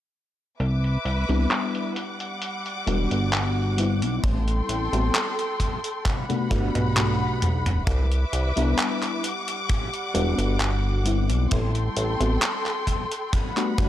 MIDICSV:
0, 0, Header, 1, 5, 480
1, 0, Start_track
1, 0, Tempo, 909091
1, 318, Time_signature, 4, 2, 24, 8
1, 7333, End_track
2, 0, Start_track
2, 0, Title_t, "String section"
2, 0, Program_c, 0, 48
2, 317, Note_on_c, 0, 71, 75
2, 318, Note_on_c, 0, 76, 66
2, 318, Note_on_c, 0, 86, 80
2, 1031, Note_off_c, 0, 71, 0
2, 1031, Note_off_c, 0, 76, 0
2, 1031, Note_off_c, 0, 86, 0
2, 1035, Note_on_c, 0, 55, 73
2, 1035, Note_on_c, 0, 78, 67
2, 1037, Note_on_c, 0, 86, 79
2, 2225, Note_off_c, 0, 55, 0
2, 2225, Note_off_c, 0, 78, 0
2, 2225, Note_off_c, 0, 86, 0
2, 2235, Note_on_c, 0, 79, 70
2, 2235, Note_on_c, 0, 84, 84
2, 2236, Note_on_c, 0, 69, 80
2, 3187, Note_off_c, 0, 69, 0
2, 3187, Note_off_c, 0, 79, 0
2, 3187, Note_off_c, 0, 84, 0
2, 3197, Note_on_c, 0, 55, 78
2, 3197, Note_on_c, 0, 78, 74
2, 3197, Note_on_c, 0, 83, 86
2, 4148, Note_off_c, 0, 55, 0
2, 4148, Note_off_c, 0, 78, 0
2, 4148, Note_off_c, 0, 83, 0
2, 4156, Note_on_c, 0, 71, 77
2, 4156, Note_on_c, 0, 86, 89
2, 4157, Note_on_c, 0, 76, 75
2, 4870, Note_off_c, 0, 71, 0
2, 4870, Note_off_c, 0, 76, 0
2, 4879, Note_on_c, 0, 55, 77
2, 4879, Note_on_c, 0, 78, 70
2, 6058, Note_off_c, 0, 86, 0
2, 6066, Note_off_c, 0, 55, 0
2, 6066, Note_off_c, 0, 78, 0
2, 6077, Note_on_c, 0, 69, 81
2, 6077, Note_on_c, 0, 84, 88
2, 6078, Note_on_c, 0, 79, 69
2, 7028, Note_off_c, 0, 69, 0
2, 7028, Note_off_c, 0, 84, 0
2, 7029, Note_off_c, 0, 79, 0
2, 7039, Note_on_c, 0, 55, 77
2, 7040, Note_on_c, 0, 78, 72
2, 7040, Note_on_c, 0, 83, 85
2, 7333, Note_off_c, 0, 55, 0
2, 7333, Note_off_c, 0, 78, 0
2, 7333, Note_off_c, 0, 83, 0
2, 7333, End_track
3, 0, Start_track
3, 0, Title_t, "FM electric piano"
3, 0, Program_c, 1, 5
3, 679, Note_on_c, 1, 55, 92
3, 682, Note_on_c, 1, 59, 83
3, 685, Note_on_c, 1, 62, 84
3, 688, Note_on_c, 1, 64, 102
3, 1022, Note_off_c, 1, 55, 0
3, 1023, Note_off_c, 1, 59, 0
3, 1025, Note_off_c, 1, 62, 0
3, 1026, Note_off_c, 1, 64, 0
3, 1512, Note_on_c, 1, 55, 88
3, 1515, Note_on_c, 1, 59, 82
3, 1517, Note_on_c, 1, 62, 77
3, 1520, Note_on_c, 1, 66, 92
3, 1968, Note_off_c, 1, 55, 0
3, 1969, Note_off_c, 1, 59, 0
3, 1970, Note_off_c, 1, 62, 0
3, 1972, Note_off_c, 1, 66, 0
3, 1989, Note_on_c, 1, 55, 72
3, 1994, Note_on_c, 1, 59, 62
3, 1999, Note_on_c, 1, 60, 61
3, 2005, Note_on_c, 1, 64, 80
3, 2569, Note_off_c, 1, 55, 0
3, 2572, Note_off_c, 1, 59, 0
3, 2575, Note_off_c, 1, 60, 0
3, 2577, Note_off_c, 1, 64, 0
3, 2600, Note_on_c, 1, 55, 75
3, 2603, Note_on_c, 1, 59, 67
3, 2605, Note_on_c, 1, 60, 65
3, 2608, Note_on_c, 1, 66, 80
3, 2682, Note_off_c, 1, 55, 0
3, 2684, Note_off_c, 1, 59, 0
3, 2685, Note_off_c, 1, 60, 0
3, 2686, Note_off_c, 1, 66, 0
3, 3320, Note_on_c, 1, 57, 71
3, 3323, Note_on_c, 1, 59, 64
3, 3326, Note_on_c, 1, 62, 67
3, 3328, Note_on_c, 1, 66, 75
3, 3409, Note_off_c, 1, 57, 0
3, 3410, Note_off_c, 1, 59, 0
3, 3411, Note_off_c, 1, 62, 0
3, 3413, Note_off_c, 1, 66, 0
3, 3433, Note_on_c, 1, 57, 75
3, 3435, Note_on_c, 1, 59, 70
3, 3438, Note_on_c, 1, 62, 70
3, 3440, Note_on_c, 1, 66, 82
3, 3648, Note_off_c, 1, 57, 0
3, 3649, Note_off_c, 1, 59, 0
3, 3651, Note_off_c, 1, 62, 0
3, 3652, Note_off_c, 1, 66, 0
3, 3674, Note_on_c, 1, 57, 81
3, 3677, Note_on_c, 1, 59, 73
3, 3679, Note_on_c, 1, 62, 74
3, 3682, Note_on_c, 1, 66, 85
3, 3817, Note_off_c, 1, 57, 0
3, 3818, Note_off_c, 1, 59, 0
3, 3819, Note_off_c, 1, 62, 0
3, 3821, Note_off_c, 1, 66, 0
3, 4519, Note_on_c, 1, 55, 94
3, 4522, Note_on_c, 1, 59, 91
3, 4525, Note_on_c, 1, 62, 81
3, 4527, Note_on_c, 1, 64, 104
3, 4862, Note_off_c, 1, 55, 0
3, 4863, Note_off_c, 1, 59, 0
3, 4865, Note_off_c, 1, 62, 0
3, 4866, Note_off_c, 1, 64, 0
3, 5354, Note_on_c, 1, 55, 88
3, 5356, Note_on_c, 1, 59, 82
3, 5359, Note_on_c, 1, 62, 82
3, 5362, Note_on_c, 1, 66, 99
3, 5809, Note_off_c, 1, 55, 0
3, 5810, Note_off_c, 1, 59, 0
3, 5811, Note_off_c, 1, 62, 0
3, 5813, Note_off_c, 1, 66, 0
3, 5830, Note_on_c, 1, 55, 68
3, 5836, Note_on_c, 1, 59, 64
3, 5841, Note_on_c, 1, 60, 65
3, 5846, Note_on_c, 1, 64, 81
3, 6410, Note_off_c, 1, 55, 0
3, 6413, Note_off_c, 1, 59, 0
3, 6416, Note_off_c, 1, 60, 0
3, 6418, Note_off_c, 1, 64, 0
3, 6441, Note_on_c, 1, 55, 69
3, 6443, Note_on_c, 1, 59, 69
3, 6446, Note_on_c, 1, 60, 65
3, 6448, Note_on_c, 1, 66, 84
3, 6523, Note_off_c, 1, 55, 0
3, 6524, Note_off_c, 1, 59, 0
3, 6525, Note_off_c, 1, 60, 0
3, 6527, Note_off_c, 1, 66, 0
3, 7160, Note_on_c, 1, 57, 70
3, 7162, Note_on_c, 1, 59, 64
3, 7165, Note_on_c, 1, 62, 65
3, 7168, Note_on_c, 1, 66, 77
3, 7248, Note_off_c, 1, 57, 0
3, 7250, Note_off_c, 1, 59, 0
3, 7251, Note_off_c, 1, 62, 0
3, 7252, Note_off_c, 1, 66, 0
3, 7274, Note_on_c, 1, 57, 75
3, 7277, Note_on_c, 1, 59, 69
3, 7279, Note_on_c, 1, 62, 67
3, 7282, Note_on_c, 1, 66, 83
3, 7333, Note_off_c, 1, 57, 0
3, 7333, Note_off_c, 1, 59, 0
3, 7333, Note_off_c, 1, 62, 0
3, 7333, Note_off_c, 1, 66, 0
3, 7333, End_track
4, 0, Start_track
4, 0, Title_t, "Analog synth bass"
4, 0, Program_c, 2, 38
4, 316, Note_on_c, 2, 36, 94
4, 517, Note_off_c, 2, 36, 0
4, 556, Note_on_c, 2, 36, 86
4, 661, Note_off_c, 2, 36, 0
4, 682, Note_on_c, 2, 36, 90
4, 777, Note_off_c, 2, 36, 0
4, 1516, Note_on_c, 2, 28, 107
4, 1621, Note_off_c, 2, 28, 0
4, 1642, Note_on_c, 2, 31, 94
4, 2122, Note_on_c, 2, 35, 86
4, 2130, Note_off_c, 2, 31, 0
4, 2217, Note_off_c, 2, 35, 0
4, 2237, Note_on_c, 2, 33, 102
4, 2437, Note_off_c, 2, 33, 0
4, 2476, Note_on_c, 2, 33, 89
4, 2581, Note_off_c, 2, 33, 0
4, 2602, Note_on_c, 2, 33, 91
4, 2697, Note_off_c, 2, 33, 0
4, 3437, Note_on_c, 2, 31, 102
4, 3541, Note_off_c, 2, 31, 0
4, 3563, Note_on_c, 2, 35, 91
4, 4043, Note_on_c, 2, 26, 88
4, 4051, Note_off_c, 2, 35, 0
4, 4137, Note_off_c, 2, 26, 0
4, 4155, Note_on_c, 2, 36, 99
4, 4356, Note_off_c, 2, 36, 0
4, 4398, Note_on_c, 2, 36, 83
4, 4502, Note_off_c, 2, 36, 0
4, 4524, Note_on_c, 2, 36, 90
4, 4618, Note_off_c, 2, 36, 0
4, 5357, Note_on_c, 2, 28, 111
4, 5461, Note_off_c, 2, 28, 0
4, 5483, Note_on_c, 2, 31, 86
4, 5964, Note_on_c, 2, 35, 90
4, 5972, Note_off_c, 2, 31, 0
4, 6058, Note_off_c, 2, 35, 0
4, 6080, Note_on_c, 2, 33, 101
4, 6279, Note_off_c, 2, 33, 0
4, 6317, Note_on_c, 2, 33, 91
4, 6422, Note_off_c, 2, 33, 0
4, 6444, Note_on_c, 2, 33, 92
4, 6538, Note_off_c, 2, 33, 0
4, 7277, Note_on_c, 2, 31, 104
4, 7333, Note_off_c, 2, 31, 0
4, 7333, End_track
5, 0, Start_track
5, 0, Title_t, "Drums"
5, 317, Note_on_c, 9, 42, 74
5, 370, Note_off_c, 9, 42, 0
5, 444, Note_on_c, 9, 42, 35
5, 497, Note_off_c, 9, 42, 0
5, 557, Note_on_c, 9, 42, 74
5, 610, Note_off_c, 9, 42, 0
5, 684, Note_on_c, 9, 42, 50
5, 737, Note_off_c, 9, 42, 0
5, 797, Note_on_c, 9, 39, 101
5, 797, Note_on_c, 9, 42, 75
5, 849, Note_off_c, 9, 39, 0
5, 849, Note_off_c, 9, 42, 0
5, 923, Note_on_c, 9, 42, 34
5, 976, Note_off_c, 9, 42, 0
5, 1036, Note_on_c, 9, 42, 77
5, 1089, Note_off_c, 9, 42, 0
5, 1162, Note_on_c, 9, 42, 53
5, 1215, Note_off_c, 9, 42, 0
5, 1276, Note_on_c, 9, 42, 77
5, 1328, Note_off_c, 9, 42, 0
5, 1403, Note_on_c, 9, 42, 35
5, 1456, Note_off_c, 9, 42, 0
5, 1517, Note_on_c, 9, 42, 76
5, 1570, Note_off_c, 9, 42, 0
5, 1643, Note_on_c, 9, 42, 50
5, 1696, Note_off_c, 9, 42, 0
5, 1758, Note_on_c, 9, 39, 120
5, 1758, Note_on_c, 9, 42, 80
5, 1810, Note_off_c, 9, 39, 0
5, 1810, Note_off_c, 9, 42, 0
5, 1997, Note_on_c, 9, 42, 81
5, 2050, Note_off_c, 9, 42, 0
5, 2124, Note_on_c, 9, 42, 53
5, 2176, Note_off_c, 9, 42, 0
5, 2237, Note_on_c, 9, 36, 125
5, 2237, Note_on_c, 9, 42, 80
5, 2290, Note_off_c, 9, 36, 0
5, 2290, Note_off_c, 9, 42, 0
5, 2363, Note_on_c, 9, 42, 35
5, 2416, Note_off_c, 9, 42, 0
5, 2477, Note_on_c, 9, 42, 75
5, 2530, Note_off_c, 9, 42, 0
5, 2605, Note_on_c, 9, 42, 53
5, 2657, Note_off_c, 9, 42, 0
5, 2718, Note_on_c, 9, 39, 112
5, 2718, Note_on_c, 9, 42, 75
5, 2771, Note_off_c, 9, 39, 0
5, 2771, Note_off_c, 9, 42, 0
5, 2845, Note_on_c, 9, 42, 33
5, 2898, Note_off_c, 9, 42, 0
5, 2956, Note_on_c, 9, 36, 59
5, 2958, Note_on_c, 9, 42, 85
5, 3009, Note_off_c, 9, 36, 0
5, 3011, Note_off_c, 9, 42, 0
5, 3084, Note_on_c, 9, 42, 53
5, 3137, Note_off_c, 9, 42, 0
5, 3196, Note_on_c, 9, 36, 112
5, 3199, Note_on_c, 9, 39, 64
5, 3199, Note_on_c, 9, 42, 85
5, 3199, Note_on_c, 9, 48, 62
5, 3249, Note_off_c, 9, 36, 0
5, 3251, Note_off_c, 9, 39, 0
5, 3251, Note_off_c, 9, 42, 0
5, 3251, Note_off_c, 9, 48, 0
5, 3326, Note_on_c, 9, 42, 38
5, 3326, Note_on_c, 9, 48, 56
5, 3378, Note_off_c, 9, 42, 0
5, 3378, Note_off_c, 9, 48, 0
5, 3437, Note_on_c, 9, 36, 99
5, 3439, Note_on_c, 9, 42, 77
5, 3490, Note_off_c, 9, 36, 0
5, 3492, Note_off_c, 9, 42, 0
5, 3565, Note_on_c, 9, 42, 55
5, 3565, Note_on_c, 9, 47, 64
5, 3618, Note_off_c, 9, 42, 0
5, 3618, Note_off_c, 9, 47, 0
5, 3679, Note_on_c, 9, 39, 118
5, 3679, Note_on_c, 9, 42, 83
5, 3679, Note_on_c, 9, 47, 88
5, 3732, Note_off_c, 9, 39, 0
5, 3732, Note_off_c, 9, 42, 0
5, 3732, Note_off_c, 9, 47, 0
5, 3919, Note_on_c, 9, 42, 76
5, 3919, Note_on_c, 9, 45, 94
5, 3972, Note_off_c, 9, 42, 0
5, 3972, Note_off_c, 9, 45, 0
5, 4045, Note_on_c, 9, 42, 56
5, 4045, Note_on_c, 9, 45, 86
5, 4098, Note_off_c, 9, 42, 0
5, 4098, Note_off_c, 9, 45, 0
5, 4156, Note_on_c, 9, 36, 121
5, 4159, Note_on_c, 9, 42, 76
5, 4208, Note_off_c, 9, 36, 0
5, 4212, Note_off_c, 9, 42, 0
5, 4285, Note_on_c, 9, 42, 35
5, 4338, Note_off_c, 9, 42, 0
5, 4399, Note_on_c, 9, 42, 78
5, 4452, Note_off_c, 9, 42, 0
5, 4525, Note_on_c, 9, 42, 55
5, 4577, Note_off_c, 9, 42, 0
5, 4638, Note_on_c, 9, 39, 114
5, 4638, Note_on_c, 9, 42, 79
5, 4691, Note_off_c, 9, 39, 0
5, 4691, Note_off_c, 9, 42, 0
5, 4765, Note_on_c, 9, 39, 33
5, 4765, Note_on_c, 9, 42, 38
5, 4818, Note_off_c, 9, 39, 0
5, 4818, Note_off_c, 9, 42, 0
5, 4879, Note_on_c, 9, 42, 81
5, 4932, Note_off_c, 9, 42, 0
5, 5005, Note_on_c, 9, 42, 53
5, 5058, Note_off_c, 9, 42, 0
5, 5119, Note_on_c, 9, 36, 120
5, 5119, Note_on_c, 9, 42, 80
5, 5171, Note_off_c, 9, 42, 0
5, 5172, Note_off_c, 9, 36, 0
5, 5246, Note_on_c, 9, 42, 37
5, 5298, Note_off_c, 9, 42, 0
5, 5358, Note_on_c, 9, 42, 74
5, 5411, Note_off_c, 9, 42, 0
5, 5484, Note_on_c, 9, 42, 52
5, 5537, Note_off_c, 9, 42, 0
5, 5598, Note_on_c, 9, 39, 120
5, 5598, Note_on_c, 9, 42, 80
5, 5650, Note_off_c, 9, 39, 0
5, 5650, Note_off_c, 9, 42, 0
5, 5838, Note_on_c, 9, 42, 81
5, 5890, Note_off_c, 9, 42, 0
5, 5964, Note_on_c, 9, 42, 53
5, 6017, Note_off_c, 9, 42, 0
5, 6078, Note_on_c, 9, 42, 81
5, 6081, Note_on_c, 9, 36, 120
5, 6131, Note_off_c, 9, 42, 0
5, 6134, Note_off_c, 9, 36, 0
5, 6204, Note_on_c, 9, 42, 36
5, 6257, Note_off_c, 9, 42, 0
5, 6318, Note_on_c, 9, 42, 80
5, 6370, Note_off_c, 9, 42, 0
5, 6445, Note_on_c, 9, 42, 56
5, 6498, Note_off_c, 9, 42, 0
5, 6558, Note_on_c, 9, 39, 113
5, 6558, Note_on_c, 9, 42, 81
5, 6611, Note_off_c, 9, 39, 0
5, 6611, Note_off_c, 9, 42, 0
5, 6685, Note_on_c, 9, 39, 35
5, 6685, Note_on_c, 9, 42, 37
5, 6737, Note_off_c, 9, 39, 0
5, 6737, Note_off_c, 9, 42, 0
5, 6796, Note_on_c, 9, 36, 59
5, 6798, Note_on_c, 9, 42, 83
5, 6849, Note_off_c, 9, 36, 0
5, 6851, Note_off_c, 9, 42, 0
5, 6925, Note_on_c, 9, 42, 54
5, 6978, Note_off_c, 9, 42, 0
5, 7038, Note_on_c, 9, 36, 111
5, 7039, Note_on_c, 9, 42, 83
5, 7091, Note_off_c, 9, 36, 0
5, 7091, Note_off_c, 9, 42, 0
5, 7165, Note_on_c, 9, 39, 39
5, 7165, Note_on_c, 9, 42, 37
5, 7218, Note_off_c, 9, 39, 0
5, 7218, Note_off_c, 9, 42, 0
5, 7277, Note_on_c, 9, 36, 115
5, 7279, Note_on_c, 9, 42, 75
5, 7330, Note_off_c, 9, 36, 0
5, 7332, Note_off_c, 9, 42, 0
5, 7333, End_track
0, 0, End_of_file